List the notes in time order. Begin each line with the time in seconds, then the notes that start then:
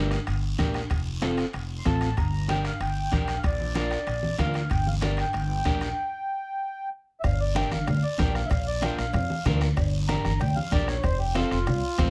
Already playing: G1 D4 G4 A#4
0.11 bombo rim, high timbale, short guiro
0.27 G1, bombo rim, high conga, high timbale, long guiro
0.58 A#1 D4 G4 A#4, bombo low, bombo rim, high conga, high timbale, short guiro
0.74 bombo rim, high timbale, short guiro
0.90 F1, bombo low, bombo rim, high conga, high timbale, long guiro
1.22 C4 F4 A4, bombo rim, high conga, high timbale, short guiro
1.37 bombo rim, high timbale, short guiro
1.53 F1, bombo rim, high conga, high timbale, long guiro
1.78 C6
1.85 A1 C4 F4 A4 A5, bombo low, bombo rim, high conga, high timbale, short guiro
2.01 bombo rim, high timbale, short guiro
2.17 G1 A#5, bombo low, bombo rim, high conga, high timbale, long guiro
2.48 D4 G4 A#4 G5, bombo rim, high conga, high timbale, short guiro
2.65 F5, bombo rim, high timbale, short guiro
2.80 G1 G5, bombo rim, high conga, high timbale, long guiro
3.12 A#1 D4 G4 A#4 G5, bombo low, bombo rim, high conga, high timbale, short guiro
3.28 bombo rim, high timbale, short guiro
3.38 F5
3.44 A#1 D5, bombo low, bombo rim, high conga, high timbale, long guiro
3.60 high conga
3.75 D4 F4 A#4, bombo rim, high conga, high timbale, short guiro
3.91 bombo rim, high timbale, short guiro
4.07 A#1, bombo rim, high conga, high timbale, long guiro
4.23 high conga
4.38 D2 D4 F4 A#4 F5, bombo low, bombo rim, high conga, high timbale, low timbale, short guiro
4.54 bombo rim, high timbale, short guiro
4.70 G1 G5, bombo low, bombo rim, high conga, high timbale, long guiro
4.86 F5, high conga
5.01 D4 G4 A#4 D5, bombo rim, high conga, high timbale, short guiro
5.17 G5, bombo rim, high timbale, short guiro
5.33 G1, bombo rim, high conga, high timbale, long guiro
5.65 A#1 D4 G4 A#4, bombo low, bombo rim, high conga, high timbale, short guiro
5.81 bombo rim, high timbale, short guiro
7.20 G1 E5, bombo low, bombo rim, cowbell
7.24 F5, high conga, long guiro
7.40 D5
7.55 D4 G4 A#4 G5, bombo rim, cowbell, high conga, short guiro
7.71 G1 F5, bombo rim, high conga, short guiro
7.87 D2 F5, bombo rim, cowbell, high conga, low conga, long guiro
8.03 D5
8.18 A#1 D4 G4 A#4 G5, bombo low, bombo rim, cowbell, high conga, low timbale, short guiro
8.35 F5, bombo rim, short guiro
8.46 E5, cowbell
8.50 A#1 F5, bombo low, bombo rim, high conga, long guiro
8.67 D5
8.82 D4 F4 A#4 G5, bombo rim, cowbell, high conga, short guiro
8.98 A#1 F5, bombo rim, short guiro
9.13 F2 F5, bombo rim, cowbell, high conga, low conga, long guiro
9.30 high conga
9.45 D2 D4 F4 A#4, bombo low, bombo rim, cowbell, high conga, low conga, low timbale, short guiro
9.61 bombo rim, short guiro
9.77 G1, bombo low, bombo rim, cowbell, high conga, long guiro
10.08 D4 G4 A#4 A#5, bombo rim, cowbell, high conga, short guiro
10.25 G1, bombo rim, high conga, short guiro
10.40 D2 G5, bombo rim, cowbell, high conga, low conga, long guiro
10.56 F5, high conga
10.71 A#1 D4 G4 A#4 D5, bombo low, bombo rim, cowbell, high conga, short guiro
10.88 C#5, bombo rim, short guiro
11.03 F1 C5, bombo low, bombo rim, cowbell, high conga, long guiro
11.19 G4
11.35 C4 F4 A4, bombo rim, cowbell, high conga, short guiro
11.51 F1 F4, bombo rim, short guiro
11.67 C2, bombo rim, cowbell, high conga, low conga, long guiro
11.98 A1 C4 F4 C5, bombo low, bombo rim, cowbell, high conga, low timbale, short guiro